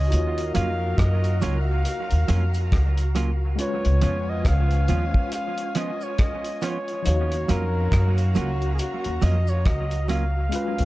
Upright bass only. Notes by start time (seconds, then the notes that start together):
0.13 D#2
0.56 F2
0.99 F#2
1.43 C#2
2.12 D#2
2.30 F2
2.73 C#2
3.86 C#2
4.46 C#2
4.90 D#2
7.07 D#2
7.50 F2
7.93 F#2
8.37 C#2
9.06 D#2
9.23 F2
9.66 C#2
10.79 C#2